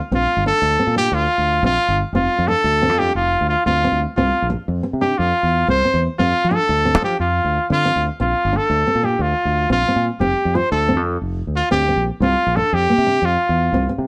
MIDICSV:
0, 0, Header, 1, 5, 480
1, 0, Start_track
1, 0, Key_signature, -1, "major"
1, 0, Tempo, 335946
1, 184, Time_signature, 12, 3, 24, 8
1, 20103, End_track
2, 0, Start_track
2, 0, Title_t, "Trumpet"
2, 0, Program_c, 0, 56
2, 206, Note_on_c, 0, 65, 82
2, 643, Note_off_c, 0, 65, 0
2, 674, Note_on_c, 0, 69, 98
2, 1341, Note_off_c, 0, 69, 0
2, 1395, Note_on_c, 0, 67, 91
2, 1630, Note_on_c, 0, 65, 84
2, 1652, Note_off_c, 0, 67, 0
2, 2350, Note_off_c, 0, 65, 0
2, 2365, Note_on_c, 0, 65, 92
2, 2861, Note_off_c, 0, 65, 0
2, 3077, Note_on_c, 0, 65, 86
2, 3543, Note_on_c, 0, 69, 99
2, 3564, Note_off_c, 0, 65, 0
2, 4269, Note_on_c, 0, 67, 88
2, 4291, Note_off_c, 0, 69, 0
2, 4502, Note_off_c, 0, 67, 0
2, 4510, Note_on_c, 0, 65, 77
2, 4958, Note_off_c, 0, 65, 0
2, 4985, Note_on_c, 0, 65, 77
2, 5212, Note_off_c, 0, 65, 0
2, 5230, Note_on_c, 0, 65, 90
2, 5734, Note_off_c, 0, 65, 0
2, 5950, Note_on_c, 0, 65, 80
2, 6398, Note_off_c, 0, 65, 0
2, 7162, Note_on_c, 0, 67, 84
2, 7400, Note_on_c, 0, 65, 84
2, 7421, Note_off_c, 0, 67, 0
2, 8116, Note_off_c, 0, 65, 0
2, 8141, Note_on_c, 0, 72, 99
2, 8630, Note_off_c, 0, 72, 0
2, 8839, Note_on_c, 0, 65, 93
2, 9348, Note_on_c, 0, 69, 106
2, 9370, Note_off_c, 0, 65, 0
2, 10050, Note_off_c, 0, 69, 0
2, 10064, Note_on_c, 0, 67, 88
2, 10272, Note_off_c, 0, 67, 0
2, 10289, Note_on_c, 0, 65, 83
2, 10950, Note_off_c, 0, 65, 0
2, 11035, Note_on_c, 0, 65, 98
2, 11516, Note_off_c, 0, 65, 0
2, 11730, Note_on_c, 0, 65, 82
2, 12238, Note_on_c, 0, 69, 95
2, 12259, Note_off_c, 0, 65, 0
2, 12924, Note_on_c, 0, 67, 79
2, 12945, Note_off_c, 0, 69, 0
2, 13168, Note_on_c, 0, 65, 80
2, 13189, Note_off_c, 0, 67, 0
2, 13876, Note_off_c, 0, 65, 0
2, 13893, Note_on_c, 0, 65, 90
2, 14382, Note_off_c, 0, 65, 0
2, 14576, Note_on_c, 0, 67, 83
2, 15086, Note_on_c, 0, 72, 86
2, 15108, Note_off_c, 0, 67, 0
2, 15307, Note_off_c, 0, 72, 0
2, 15315, Note_on_c, 0, 69, 86
2, 15756, Note_off_c, 0, 69, 0
2, 16519, Note_on_c, 0, 65, 81
2, 16734, Note_off_c, 0, 65, 0
2, 16740, Note_on_c, 0, 67, 90
2, 17242, Note_off_c, 0, 67, 0
2, 17467, Note_on_c, 0, 65, 86
2, 17946, Note_on_c, 0, 69, 91
2, 17967, Note_off_c, 0, 65, 0
2, 18200, Note_on_c, 0, 67, 97
2, 18221, Note_off_c, 0, 69, 0
2, 18935, Note_on_c, 0, 65, 79
2, 18956, Note_off_c, 0, 67, 0
2, 19877, Note_off_c, 0, 65, 0
2, 20103, End_track
3, 0, Start_track
3, 0, Title_t, "Nylon-string guitar"
3, 0, Program_c, 1, 24
3, 174, Note_on_c, 1, 60, 90
3, 523, Note_off_c, 1, 60, 0
3, 659, Note_on_c, 1, 62, 76
3, 1007, Note_off_c, 1, 62, 0
3, 1135, Note_on_c, 1, 60, 81
3, 1312, Note_off_c, 1, 60, 0
3, 1374, Note_on_c, 1, 62, 77
3, 1724, Note_off_c, 1, 62, 0
3, 2346, Note_on_c, 1, 60, 78
3, 2520, Note_off_c, 1, 60, 0
3, 3070, Note_on_c, 1, 60, 90
3, 3415, Note_off_c, 1, 60, 0
3, 3547, Note_on_c, 1, 62, 83
3, 3893, Note_off_c, 1, 62, 0
3, 4033, Note_on_c, 1, 60, 84
3, 4205, Note_off_c, 1, 60, 0
3, 4279, Note_on_c, 1, 62, 69
3, 4622, Note_off_c, 1, 62, 0
3, 5239, Note_on_c, 1, 60, 77
3, 5409, Note_off_c, 1, 60, 0
3, 5493, Note_on_c, 1, 60, 81
3, 5831, Note_off_c, 1, 60, 0
3, 5970, Note_on_c, 1, 60, 97
3, 6309, Note_off_c, 1, 60, 0
3, 6905, Note_on_c, 1, 60, 75
3, 7081, Note_off_c, 1, 60, 0
3, 7163, Note_on_c, 1, 62, 73
3, 7504, Note_off_c, 1, 62, 0
3, 8123, Note_on_c, 1, 60, 81
3, 8292, Note_off_c, 1, 60, 0
3, 8357, Note_on_c, 1, 60, 68
3, 8700, Note_off_c, 1, 60, 0
3, 8849, Note_on_c, 1, 60, 89
3, 9188, Note_off_c, 1, 60, 0
3, 9301, Note_on_c, 1, 62, 78
3, 9649, Note_off_c, 1, 62, 0
3, 9790, Note_on_c, 1, 60, 81
3, 9963, Note_off_c, 1, 60, 0
3, 10033, Note_on_c, 1, 62, 68
3, 10376, Note_off_c, 1, 62, 0
3, 11001, Note_on_c, 1, 60, 73
3, 11169, Note_off_c, 1, 60, 0
3, 11217, Note_on_c, 1, 60, 77
3, 11566, Note_off_c, 1, 60, 0
3, 11714, Note_on_c, 1, 60, 79
3, 12056, Note_off_c, 1, 60, 0
3, 12185, Note_on_c, 1, 62, 69
3, 12531, Note_off_c, 1, 62, 0
3, 12675, Note_on_c, 1, 60, 76
3, 12845, Note_off_c, 1, 60, 0
3, 12904, Note_on_c, 1, 62, 66
3, 13249, Note_off_c, 1, 62, 0
3, 13859, Note_on_c, 1, 60, 78
3, 14033, Note_off_c, 1, 60, 0
3, 14121, Note_on_c, 1, 60, 73
3, 14460, Note_off_c, 1, 60, 0
3, 14586, Note_on_c, 1, 60, 95
3, 14930, Note_off_c, 1, 60, 0
3, 15076, Note_on_c, 1, 65, 84
3, 15415, Note_off_c, 1, 65, 0
3, 15554, Note_on_c, 1, 60, 86
3, 15722, Note_off_c, 1, 60, 0
3, 16731, Note_on_c, 1, 60, 81
3, 16907, Note_off_c, 1, 60, 0
3, 16980, Note_on_c, 1, 60, 83
3, 17324, Note_off_c, 1, 60, 0
3, 17461, Note_on_c, 1, 60, 85
3, 17805, Note_off_c, 1, 60, 0
3, 17954, Note_on_c, 1, 62, 77
3, 18293, Note_off_c, 1, 62, 0
3, 18428, Note_on_c, 1, 58, 80
3, 18597, Note_off_c, 1, 58, 0
3, 18670, Note_on_c, 1, 62, 71
3, 19011, Note_off_c, 1, 62, 0
3, 19632, Note_on_c, 1, 60, 80
3, 19800, Note_off_c, 1, 60, 0
3, 19850, Note_on_c, 1, 60, 72
3, 20103, Note_off_c, 1, 60, 0
3, 20103, End_track
4, 0, Start_track
4, 0, Title_t, "Fingered electric bass"
4, 0, Program_c, 2, 33
4, 161, Note_on_c, 2, 34, 92
4, 361, Note_off_c, 2, 34, 0
4, 524, Note_on_c, 2, 31, 89
4, 723, Note_off_c, 2, 31, 0
4, 883, Note_on_c, 2, 38, 88
4, 1082, Note_off_c, 2, 38, 0
4, 1241, Note_on_c, 2, 46, 83
4, 1537, Note_off_c, 2, 46, 0
4, 1597, Note_on_c, 2, 38, 105
4, 1799, Note_off_c, 2, 38, 0
4, 1971, Note_on_c, 2, 38, 73
4, 2264, Note_off_c, 2, 38, 0
4, 2325, Note_on_c, 2, 34, 105
4, 2525, Note_off_c, 2, 34, 0
4, 2691, Note_on_c, 2, 31, 95
4, 2889, Note_off_c, 2, 31, 0
4, 3038, Note_on_c, 2, 29, 93
4, 3241, Note_off_c, 2, 29, 0
4, 3408, Note_on_c, 2, 41, 85
4, 3608, Note_off_c, 2, 41, 0
4, 3774, Note_on_c, 2, 38, 101
4, 4136, Note_off_c, 2, 38, 0
4, 4136, Note_on_c, 2, 41, 83
4, 4428, Note_off_c, 2, 41, 0
4, 4502, Note_on_c, 2, 29, 87
4, 4791, Note_off_c, 2, 29, 0
4, 4871, Note_on_c, 2, 38, 86
4, 5062, Note_off_c, 2, 38, 0
4, 5229, Note_on_c, 2, 38, 95
4, 5516, Note_off_c, 2, 38, 0
4, 5597, Note_on_c, 2, 38, 81
4, 5786, Note_off_c, 2, 38, 0
4, 5964, Note_on_c, 2, 36, 111
4, 6150, Note_off_c, 2, 36, 0
4, 6319, Note_on_c, 2, 34, 87
4, 6507, Note_off_c, 2, 34, 0
4, 6688, Note_on_c, 2, 41, 91
4, 6872, Note_off_c, 2, 41, 0
4, 7048, Note_on_c, 2, 48, 80
4, 7328, Note_off_c, 2, 48, 0
4, 7415, Note_on_c, 2, 41, 89
4, 7597, Note_off_c, 2, 41, 0
4, 7759, Note_on_c, 2, 40, 68
4, 8042, Note_off_c, 2, 40, 0
4, 8119, Note_on_c, 2, 36, 101
4, 8306, Note_off_c, 2, 36, 0
4, 8482, Note_on_c, 2, 40, 90
4, 8669, Note_off_c, 2, 40, 0
4, 8845, Note_on_c, 2, 41, 84
4, 9030, Note_off_c, 2, 41, 0
4, 9207, Note_on_c, 2, 53, 75
4, 9391, Note_off_c, 2, 53, 0
4, 9559, Note_on_c, 2, 38, 96
4, 9926, Note_off_c, 2, 38, 0
4, 9926, Note_on_c, 2, 53, 90
4, 10205, Note_off_c, 2, 53, 0
4, 10280, Note_on_c, 2, 41, 80
4, 10561, Note_off_c, 2, 41, 0
4, 10637, Note_on_c, 2, 38, 77
4, 10824, Note_off_c, 2, 38, 0
4, 11006, Note_on_c, 2, 50, 92
4, 11284, Note_off_c, 2, 50, 0
4, 11370, Note_on_c, 2, 38, 83
4, 11552, Note_off_c, 2, 38, 0
4, 11720, Note_on_c, 2, 34, 101
4, 11905, Note_off_c, 2, 34, 0
4, 12068, Note_on_c, 2, 31, 96
4, 12258, Note_off_c, 2, 31, 0
4, 12426, Note_on_c, 2, 38, 103
4, 12616, Note_off_c, 2, 38, 0
4, 12788, Note_on_c, 2, 46, 78
4, 13073, Note_off_c, 2, 46, 0
4, 13133, Note_on_c, 2, 38, 103
4, 13328, Note_off_c, 2, 38, 0
4, 13506, Note_on_c, 2, 38, 84
4, 13791, Note_off_c, 2, 38, 0
4, 13857, Note_on_c, 2, 34, 113
4, 14050, Note_off_c, 2, 34, 0
4, 14230, Note_on_c, 2, 46, 100
4, 14418, Note_off_c, 2, 46, 0
4, 14575, Note_on_c, 2, 29, 98
4, 14769, Note_off_c, 2, 29, 0
4, 14934, Note_on_c, 2, 41, 83
4, 15128, Note_off_c, 2, 41, 0
4, 15314, Note_on_c, 2, 38, 99
4, 15668, Note_off_c, 2, 38, 0
4, 15668, Note_on_c, 2, 41, 82
4, 15951, Note_off_c, 2, 41, 0
4, 16024, Note_on_c, 2, 29, 83
4, 16308, Note_off_c, 2, 29, 0
4, 16392, Note_on_c, 2, 38, 80
4, 16578, Note_off_c, 2, 38, 0
4, 16742, Note_on_c, 2, 38, 95
4, 17027, Note_off_c, 2, 38, 0
4, 17089, Note_on_c, 2, 34, 82
4, 17284, Note_off_c, 2, 34, 0
4, 17436, Note_on_c, 2, 36, 101
4, 17636, Note_off_c, 2, 36, 0
4, 17811, Note_on_c, 2, 34, 93
4, 18005, Note_off_c, 2, 34, 0
4, 18183, Note_on_c, 2, 41, 98
4, 18372, Note_off_c, 2, 41, 0
4, 18546, Note_on_c, 2, 48, 81
4, 18829, Note_off_c, 2, 48, 0
4, 18886, Note_on_c, 2, 41, 93
4, 19081, Note_off_c, 2, 41, 0
4, 19276, Note_on_c, 2, 40, 74
4, 19555, Note_off_c, 2, 40, 0
4, 19611, Note_on_c, 2, 36, 107
4, 19804, Note_off_c, 2, 36, 0
4, 19980, Note_on_c, 2, 48, 90
4, 20103, Note_off_c, 2, 48, 0
4, 20103, End_track
5, 0, Start_track
5, 0, Title_t, "Muted nylon-string guitar strokes"
5, 6427, Note_on_c, 9, 29, 78
5, 6570, Note_off_c, 9, 29, 0
5, 20103, End_track
0, 0, End_of_file